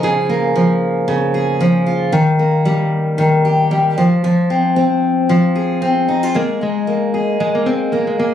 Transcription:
Already playing: F3 C#4 G#4
0.03 C#3 G#4
0.29 A#3
0.56 F3
1.08 C#3
1.34 G#4
1.60 F3
1.86 F4
2.12 D#3
2.39 A#3
2.65 G3
3.18 D#3
3.45 G4
3.71 G3
3.98 F3
4.24 F3
4.50 C4
4.76 C4
5.29 F3
5.55 G#4
5.82 C4
6.08 D#4
6.23 F4
6.34 G#3 A#3 G#4
6.61 G#3 D#4
6.87 A#3
7.14 G#4
7.40 G#3
7.55 A#3
7.66 A#3 C4
7.92 A#3
8.07 G#3
8.19 A#3 G#4

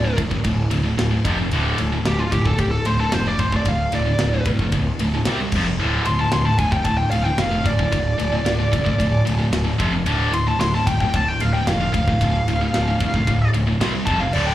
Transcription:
Already playing: D1 D5
0.04 D2 A2
0.17 C2 D2 A2, kick, ride
0.31 D2 A2, kick
0.44 D1 D2 A2, kick, ride
0.71 D1 D2 A2, ride
0.84 D2 A2
0.97 D1 D2 A2, snare, ride
1.11 D2 A2
1.24 F1 F2 C3 F3, kick, ride
1.39 F2 C3
1.51 D1 D2 A2 D3, ride
1.77 D1 D2 A2, ride
1.92 D2 A2
2.05 D1 D2 A2 G4, snare, ride
2.18 D2 A2 F4
2.32 D1 D2 A2 G4, kick, ride
2.46 D2 A2 A4, kick
2.58 D1 D2 A2 G4, kick, ride
2.71 A4
2.85 D1 D2 A2 C5, ride
3.00 D2 A2 A4
3.12 F1 D2 A2 C5, snare, ride
3.27 D2 A2 D5
3.39 D1 D2 A2 C5, kick, ride
3.52 D2 A2 D5, kick
3.65 D1 D2 A2 F5, kick, ride
3.92 D1 D2 A2 D5, ride
4.07 D2 A2
4.19 D1 D2 A2, snare, ride
4.33 D2 A2
4.45 C2 D2 A2, kick, ride
4.59 D2 A2, kick
4.72 D1 D2 A2, kick, ride
4.99 D1 D2 A2, ride
5.14 D2 A2
5.25 C2 C3 G3 C4, snare, ride
5.41 C3 G3
5.52 F1 F2 C3 F3, kick, crash
5.67 F2 C3
5.79 D1 D2 A2 D3
6.05 D1 D2 A2 C6, ride
6.19 D2 A2 A5
6.32 D1 D2 A2 C6, snare, ride
6.45 D2 A2 A5
6.58 D1 D2 A2 G#5, kick, ride
6.72 D2 A2 G5, kick
6.84 D1 D2 A2 A5, kick, ride
6.97 G5
7.11 D1 D2 A2 F5, ride
7.24 D2 A2 G5
7.38 F1 D2 A2 F5, snare, ride
7.51 D2 A2
7.64 D1 D2 A2 D5, kick, ride
7.78 D2 A2, kick
7.92 D1 D2 A2, kick, ride
8.18 D1 D2 A2, ride
8.32 D2 A2
8.45 D1 D2 A2, snare, ride
8.59 D2 A2
8.72 C2 D2 A2, kick, ride
8.85 D2 A2, kick
8.98 D1 D2 A2, kick, ride
9.25 D1 D2 A2, ride
9.39 D2 A2
9.52 D1 D2 A2, snare, ride
9.65 D2 A2
9.79 F1 F2 C3 F3, kick, ride
9.93 F2 C3
10.06 D1 D2 A2 D3, ride
10.32 D1 D2 A2 C6, ride
10.47 D2 A2 A5
10.59 D1 D2 A2 C6, snare, ride
10.74 D2 A2 A5
10.86 D1 D2 A2 G5, kick, ride
11.00 D2 A2 G5, kick
11.13 D1 D2 A2 A5, kick, ride
11.28 G5
11.40 D1 D2 A2 F5, ride
11.53 D2 A2 G5
11.67 F1 D2 A2 F5, snare, ride
11.80 D2 A2
11.93 D1 D2 A2 F5, kick, ride
12.08 D2 A2, kick
12.21 D1 D2 A2, kick, ride
12.46 D1 D2 A2, ride
12.61 D2 A2
12.73 D1 D2 A2, snare, ride
12.87 D2 A2
13.00 C2 D2 A2, kick, ride
13.14 D2 A2, kick
13.27 D1 D2 A2, kick, ride
13.53 D1 D2 A2, ride
13.67 D2 A2
13.80 C2 C3 G3 C4, snare, ride
13.93 C3 G3
14.06 F1 F2 C3 F3 A5, kick, ride
14.20 F2 C3 F5
14.33 D1 D2 A2 D3 D5, crash
14.46 G5

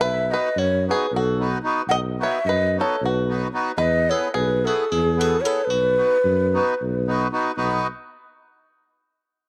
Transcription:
0.00 B1 B4 E5
0.29 B3 D#4 F#4 B4 D#5
0.33 B4
0.56 F#2 F#4 C#5
0.88 B3 D#4 F#4 G#4 B4
1.12 B1 A4
1.16 F#4
1.39 B3 D#4 F#4 B4
1.63 B3 D#4 F#4 B4
1.88 B1 D#5 F#5
2.19 B3 D#4 F#4 B4 E5
2.23 C#5
2.45 F#2 D#5
2.49 B4
2.77 B3 D#4 F#4 B4 C#5
2.81 A4
3.01 B1 B4
3.05 F#4
3.28 B3 D#4 F#4 B4
3.53 B3 D#4 F#4 B4
3.77 E2 B4 D#5
4.09 B3 E4 G#4 A4 B4 C#5
4.34 B1 G#4 B4
4.64 B3 E4 F#4 G#4 A4 B4
4.90 E2 E4 G#4
5.17 B3 E4 F#4 G#4 A4 B4
5.41 B3 E4 G#4 B4 C#5
5.45 A4
5.64 B1 B4
5.70 F#4
5.97 B3 D#4 F#4 B4
6.25 F#2
6.53 B3 D#4 F#4 B4
6.82 B1
7.08 B3 D#4 F#4 B4
7.32 B3 D#4 F#4 B4
7.57 B1 B3 D#4 F#4 B4

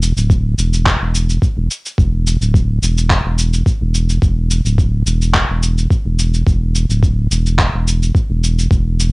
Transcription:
Already playing: E1
0.02 cabasa
0.17 D1, cabasa
0.30 kick, cabasa
0.58 E1, cabasa
0.73 cabasa
0.86 kick, clap, cabasa
1.01 E1
1.15 cabasa
1.30 cabasa
1.42 kick, cabasa
1.57 E1
1.71 cabasa
1.86 cabasa
1.98 E1, kick, cabasa
2.27 cabasa
2.41 D1, cabasa
2.54 kick, cabasa
2.82 E1, cabasa
2.98 cabasa
3.10 kick, clap, cabasa
3.25 E1
3.38 cabasa
3.53 cabasa
3.66 kick, cabasa
3.81 E1
3.95 cabasa
4.10 cabasa
4.22 E1, kick, cabasa
4.51 cabasa
4.65 D1, cabasa
4.78 kick, cabasa
5.06 E1, cabasa
5.22 cabasa
5.34 kick, clap, cabasa
5.49 E1
5.63 cabasa
5.78 cabasa
5.91 kick, cabasa
6.05 E1
6.19 cabasa
6.34 cabasa
6.47 E1, kick, cabasa
6.75 cabasa
6.89 D1, cabasa
7.03 kick, cabasa
7.31 E1, cabasa
7.46 cabasa
7.59 kick, clap, cabasa
7.73 E1
7.88 cabasa
8.02 cabasa
8.15 kick, cabasa
8.30 E1
8.44 cabasa
8.59 cabasa
8.71 E1, kick, cabasa
9.00 cabasa

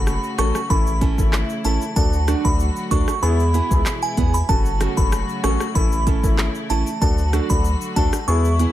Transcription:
Already playing: F#1 C#3 F#3 A3 F#4
0.07 cross-stick, shaker
0.23 shaker
0.38 A1 C#4 F#4 A4 C#6, cross-stick, closed hi-hat, shaker
0.55 cross-stick, shaker
0.70 A1 C#3 E3 C#4 E4 A4 B5, kick, shaker
0.87 shaker
1.01 C#4 E4 A4, kick, closed hi-hat, shaker
1.18 G#1 C#4 E4 A4, kick, shaker
1.33 cross-stick, clap, shaker
1.50 shaker
1.64 A1 C#4 E4 A4 A5, closed hi-hat, shaker
1.82 shaker
1.96 D2 D3 F#3 D4 F#4 A4 A5, kick, shaker
2.13 shaker
2.27 D4 F#4 A4, cross-stick, closed hi-hat, shaker
2.44 D2 D4 F#4 A4 B5, kick, shaker
2.60 shaker
2.76 shaker
2.91 D2 D4 F#4 A4 C#6, kick, closed hi-hat, shaker
3.08 cross-stick, shaker
3.22 E2 B2 E3 G#3 B3 E4 G#4 B5, shaker
3.40 shaker
3.54 B3 E4 G#4, closed hi-hat, shaker
3.71 C#2 B3 E4 G#4, kick, shaker
3.86 cross-stick, clap, shaker
4.02 G#5, shaker
4.17 E2 B3 E4 G#4, kick, closed hi-hat, shaker
4.34 B5, shaker
4.49 F#1 C#3 F#3 A3 C#4 F#4 A4 A5, kick, shaker
4.66 shaker
4.80 C#4 F#4 A4, cross-stick, closed hi-hat, shaker
4.97 F#1 C#4 F#4 A4 B5, kick, shaker
5.12 cross-stick, shaker
5.29 shaker
5.43 A1 C#4 F#4 A4 C#6, cross-stick, closed hi-hat, shaker
5.60 cross-stick, shaker
5.75 A1 C#3 E3 C#4 E4 A4 B5, kick, shaker
5.92 shaker
6.06 C#4 E4 A4, kick, closed hi-hat, shaker
6.23 G#1 C#4 E4 A4, kick, shaker
6.38 cross-stick, clap, shaker
6.55 shaker
6.70 A1 C#4 E4 A4 A5, closed hi-hat, shaker
6.87 shaker
7.01 D2 D3 F#3 D4 F#4 A4 A5, kick, shaker
7.18 shaker
7.33 D4 F#4 A4, cross-stick, closed hi-hat, shaker
7.50 D2 D4 F#4 A4 B5, kick, shaker
7.65 shaker
7.81 shaker
7.96 D2 D4 F#4 A4 A5, kick, closed hi-hat, shaker
8.13 cross-stick, shaker
8.28 E2 B2 E3 G#3 B3 E4 G#4 C#6, shaker
8.45 shaker
8.59 B3 E4 G#4, closed hi-hat, shaker

